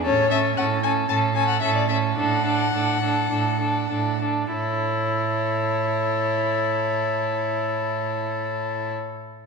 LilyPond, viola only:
\new Staff \with { instrumentName = "Viola" } { \time 4/4 \key a \major \tempo 4 = 97 cis'8 cis'8 cis'8 cis'8 cis'8 cis'8 cis'8 cis'8 | d'8 d'8 d'8 d'8 d'8 d'8 d'8 d'8 | e'1~ | e'1 | }